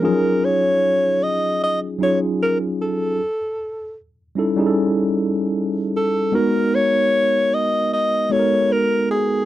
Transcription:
X:1
M:4/4
L:1/16
Q:"Swing 16ths" 1/4=76
K:Ebm
V:1 name="Alto saxophone"
B2 d4 e2 e2 d2 B2 =A2- | =A4 z8 z2 A2 | B2 d4 e2 e2 d2 B2 A2 |]
V:2 name="Tine electric piano"
[F,G,DEFA]4- [F,G,DEFA] z4 z [G,DEFA]4- [G,DEFA] z | z6 [=G,^C^D=E=A] [G,CDE_A=A]4- [G,CDE_A=A] z4 | [A,CEGB]4- [A,CEGB] z4 z [A,CEG=AB]4- [_A,CEG=AB] z |]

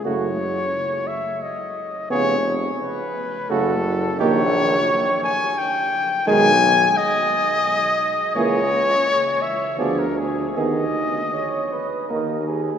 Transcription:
X:1
M:3/4
L:1/16
Q:1/4=86
K:F#dor
V:1 name="Trumpet"
c6 e2 d4 | c3 z B4 A4 | [K:G#m] c6 g2 =g4 | g4 d8 |
c6 e2 =d A _A2 | d8- d2 z2 |]
V:2 name="Flugelhorn"
F2 z8 z2 | G2 z6 F2 z2 | [K:G#m] =G2 z8 z2 | G2 z8 z2 |
G2 z6 _A2 z2 | G2 z2 c2 B2 A2 G2 |]
V:3 name="French horn"
A,2 z8 z2 | B,2 z6 A,2 z2 | [K:G#m] A,2 z8 z2 | G,2 z8 z2 |
A,2 z6 B,2 z2 | B,2 z6 A,2 z2 |]
V:4 name="Trombone" clef=bass
C,2 z8 z2 | C,2 z6 C,2 z2 | [K:G#m] D,2 z8 z2 | D,2 z8 z2 |
E,2 z6 =F,2 z2 | D,2 z6 D,2 z2 |]
V:5 name="Bass trombone" clef=bass
F,,,4 z8 | ^E,,,4 z4 F,,,4 | [K:G#m] A,,,4 z8 | B,,,4 z8 |
C,,4 z4 =D,,4 | D,,4 z4 D,,4 |]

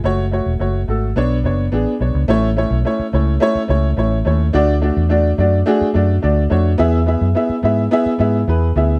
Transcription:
X:1
M:4/4
L:1/16
Q:1/4=107
K:A
V:1 name="Upright piano"
[A,Fc]2 [A,Fc]2 [A,Fc]2 [A,FA]2 [B,Dc]2 [B,Dc]2 [B,DG]2 [B,Dc]2 | [A,CEc]2 [A,CEc]2 [A,CEc]2 [A,CEc]2 [A,CEc]2 [A,CEc]2 [A,CEc]2 [A,CEc]2 | [A,DFd]2 [A,DFd]2 [A,DFd]2 [A,DFd]2 [A,DFG]2 [A,DFd]2 [A,DFd]2 [A,DFc]2 | [B,EGe]2 [B,EGe]2 [B,EGe]2 [B,EGe]2 [B,EGe]2 [B,EGe]2 [B,EGB]2 [B,EGe]2 |]
V:2 name="Fingered electric bass" clef=bass
F,,,3 E,,, F,,,2 G,,,2 B,,,2 F,,,2 A,,, z B,,, C,, | A,,,3 B,,, z2 C,,2 z2 C,,2 A,,,2 ^D,,2 | D,,3 E,,3 F,,2 z2 F,,2 D,,2 =F,,2 | E,,3 F,, z2 G,,2 z2 G,,2 E,,2 D,,2 |]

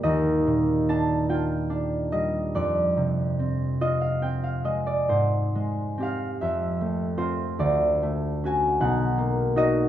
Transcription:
X:1
M:6/8
L:1/16
Q:3/8=48
K:Fmix
V:1 name="Harp"
[Bde]4 a2 g4 e2 | d6 e f g f e d | [K:Ablyd] c4 f2 =e4 c2 | d4 a2 ^f4 ^d2 |]
V:2 name="Harp"
[E,,G,B,FG]2 B,,2 D2 F2 D2 G,2 | F,,2 C,2 C2 F2 C2 _A,2 | [K:Ablyd] A,,2 A,2 [CG]2 F,,2 =A,2 [CF]2 | D,,2 =A,2 [^C^F]2 =B,,,2 ^A,2 [^DF]2 |]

